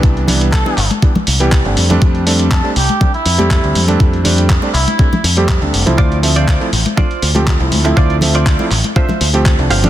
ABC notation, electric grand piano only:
X:1
M:4/4
L:1/16
Q:1/4=121
K:Ddor
V:1 name="Electric grand piano"
[E,G,B,D]2 [E,G,B,D]3 [E,G,B,D] z2 [E,G,B,D] z2 [E,G,B,G]2 [G,A,CD]2 [G,A,CD]- | [G,A,CD]2 [G,A,CD]3 [G,A,CD] z2 [G,A,CD] z2 [G,A,CG]2 [G,A,CD]2 [G,A,CD]- | [G,A,CD]2 [G,A,CD]3 [G,A,CD] z2 [G,A,CD] z2 [G,A,CG]2 [G,A,CD]2 [F,A,CE]- | [F,A,CE]2 [F,A,Ce]3 [F,A,CE] z2 [F,A,CD] z2 [F,A,CG]2 [F,A,CE]2 [F,A,CE]- |
[F,A,CE]2 [F,A,Ce]3 [F,A,CE] z2 [F,A,CD] z2 [F,A,CG]2 [F,A,CD]2 [F,A,CD] |]